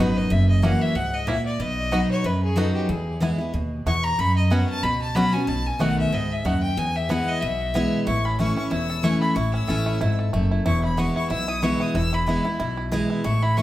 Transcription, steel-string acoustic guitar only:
Already playing: F#2 F#3
0.00 B3 D#4 F#4
0.30 F#2
0.62 E3 A#3 C#4 F#4
0.95 G#2
1.27 A#2
1.60 B2
1.91 F#3 B3 D#4 F#4
2.24 F#2
2.56 F#3 B3 D#4 F#4
2.89 E2
3.20 E3 G#3 B3 E4
3.38 B3 E4
3.54 B2
3.87 E2
4.19 F#2
4.50 F#3 B3 C#4 F#4
4.83 B2
5.15 F#3 B3 C#4 F#4
5.33 C#4 F#4
5.47 B2
5.79 D#3 A3 B3 F#4
6.12 G#2
6.45 F#2
6.77 E2
7.09 E3 G#3 B3 E4
7.42 B2
7.74 E3 G#3 B3 E4
8.07 A2
8.39 E3 A3 C#4 E4
8.56 C#4 E4
8.71 E2
9.03 E3 A3 C#4 E4
9.36 A2
9.67 E3 A3 C#4 E4
10.01 G#2
10.34 F#2
10.66 E2
10.97 E3 G#3 B3 E4
11.30 B2
11.62 E3 G#3 B3 E4
11.95 E2
12.27 E3 G#3 B3 E4
12.44 B3 E4
12.60 B2
12.92 E3 G#3 B3 E4
13.24 A2
13.57 E3 A3 C#4

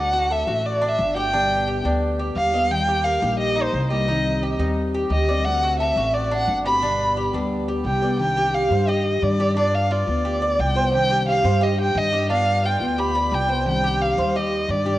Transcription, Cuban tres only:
Already playing: D5
0.13 F#4
0.31 A4
0.47 F#4
0.81 D4
1.16 G4
1.33 D4
1.68 G4
1.85 D4
2.19 G4
2.54 D#5
2.88 G4
3.05 A#4
3.22 G4
3.56 D#4
3.90 G4
4.08 D#4
4.43 G4
4.59 D#4
4.94 G4
5.28 D5
5.63 F#4
5.80 A4
5.97 F#4
6.31 D4
6.65 G4
6.83 D4
7.17 G4
7.34 D4
7.68 G4
8.02 D5
8.37 G4
8.71 C5
8.88 G4
9.40 G4
9.57 D4
9.91 F4
10.25 G4
10.42 D5
10.76 C5
11.10 G4
11.45 C5
11.61 G4
12.13 G4
12.30 D4
12.64 F4
12.98 G4
13.15 D5
13.49 C5
13.84 G4
14.18 C5
14.35 G4
14.86 G4

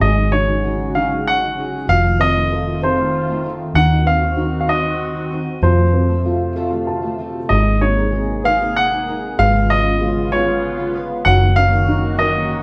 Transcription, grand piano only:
0.01 D#5
0.32 C#5
0.95 F5
1.27 F#5
1.89 F5
2.21 D#5
2.83 C5
3.75 F#5
4.07 F5
4.61 F5
4.69 D#5
5.63 C5
7.49 D#5
7.81 C#5
8.45 F5
8.76 F#5
9.39 F5
9.70 D#5
10.32 C#5
11.25 F#5
11.56 F5
12.19 D#5

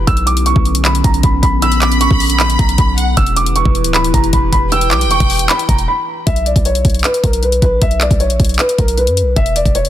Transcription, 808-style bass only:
0.07 B1
0.56 B1
1.04 B1
1.24 B1
1.43 A#1
2.11 A#1
2.59 B1
2.78 B1
3.17 E1
3.65 E1
3.85 D1
4.14 E1
4.33 E1
4.53 E1
4.91 B1
5.06 E1
5.20 E1
5.69 E1
6.27 B1
6.56 B1
6.85 B1
7.24 B1
7.62 A#1
7.82 B1
8.11 B1
8.30 A#1
8.40 B1
8.78 B1
9.07 F#2
9.22 B1
9.36 E1
9.65 E1
9.85 G1

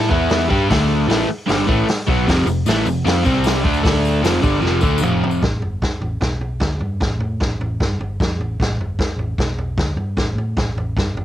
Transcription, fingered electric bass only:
0.11 E2
0.50 G2
0.70 D2
1.07 A1
1.28 muted fingered electric bass stroke
1.48 G1
1.68 A1
2.08 B1
2.28 F1
2.46 F1
2.65 A1
2.86 F1
3.05 F2
3.26 C2
3.65 D2
3.85 D2
4.23 F1
4.44 G1
4.62 F1
4.83 D2
5.01 F1
5.42 A1
5.60 G1
5.82 muted fingered electric bass stroke
6.00 A1
6.21 B1
6.62 D2
6.81 G2
7.01 A1
7.19 A2
7.41 A1
7.60 A1
7.80 G2
7.99 G1
8.20 F2
8.39 A1
8.60 A1
8.77 G1
8.98 muted fingered electric bass stroke
9.16 A1
9.39 B1
9.77 D2
9.96 G2
10.17 A1
10.35 A2
10.57 A1
10.75 A1
10.96 G2
11.14 G1

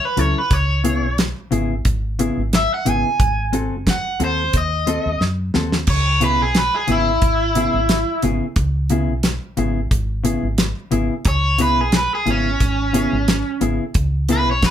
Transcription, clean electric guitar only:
0.17 F#3 C#4 E4 A4
0.84 C#3 B3 E4 G#4
1.51 C#3 B3 E4 G#4
2.19 C#3 B3 E4 G#4
2.85 C#3 B3 E4 G#4
3.53 G#3 C4 F#4 A4
4.20 G#3 C4 F#4 A4
4.87 G#3 C4 F#4 A4
5.54 G#3 C4 F#4 A4
6.21 C#3 B3 E4 G#4
6.88 C#3 B3 E4 G#4
7.55 C#3 B3 E4 G#4
8.23 C#3 B3 E4 G#4
8.90 C#3 B3 E4 G#4
9.57 C#3 B3 E4 G#4
10.24 C#3 B3 E4 G#4
10.91 C#3 B3 E4 G#4
11.58 C#3 B3 E4 G#4
12.26 C#3 B3 E4 G#4
12.93 C#3 B3 E4 G#4
13.61 C#3 B3 E4 G#4
14.29 C#3 B3 E4 G#4

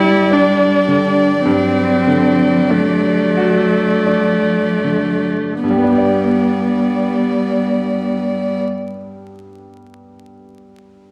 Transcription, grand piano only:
Already playing: G2 D3 D4 G4
0.31 D4
0.88 D3
1.45 G2
2.07 D3
2.70 D4
3.37 F#4
4.07 D4
4.84 D3
5.64 G2
5.70 G3
5.78 B3
5.84 D4
5.91 G4
5.98 D5

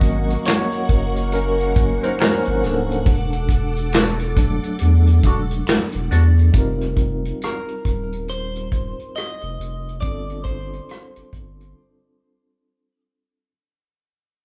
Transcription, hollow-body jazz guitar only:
2.03 C#4 F#4 A#4
2.20 C#4 F#4 A#4
3.94 D4 F#4 A4
5.25 D4 F#4 A4
6.11 D4 F#4 A4

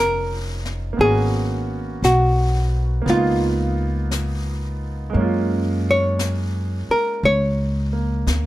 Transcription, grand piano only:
Already playing: G#3 C4 C#4 D#4 F4
0.93 A#3 B3
1.00 C#4 F#4
3.02 A#3 B3
3.10 D#4 F4
5.10 G#3 A#3
5.17 C#4
5.21 F4
7.93 A#3

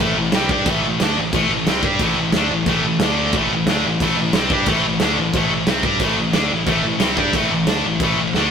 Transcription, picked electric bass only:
0.00 A1
0.15 A1
0.32 C2
0.50 G2
0.66 A1
0.84 A1
1.01 D2
1.18 A1
1.33 A1
1.49 A1
1.67 C2
1.83 G2
2.00 A1
2.16 A1
2.32 D2
2.49 A1
2.66 A1
2.83 A1
2.99 D2
3.33 A1
3.50 A1
3.66 D2
3.83 A1
4.00 A1
4.16 A1
4.33 C2
4.50 G2
4.66 A1
4.84 A1
5.00 D2
5.18 A1
5.33 A1
5.51 A1
5.67 C2
5.83 G2
6.00 A1
6.18 A1
6.34 D2
6.52 A1
6.67 A1
6.84 A1
7.00 C2
7.16 G2
7.33 A1
7.51 A1
7.66 D2
7.85 A1
8.00 A1
8.17 A1
8.33 D2

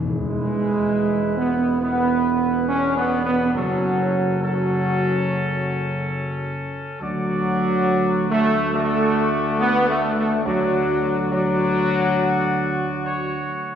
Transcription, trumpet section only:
0.06 E4 B4
1.82 E4 B4
2.68 D4
3.55 C#4 A4
4.41 C#4 A4
7.01 F#4 D5
8.73 F#4 D5
10.46 F#4 D5
11.33 F#4 D5
13.04 C#5

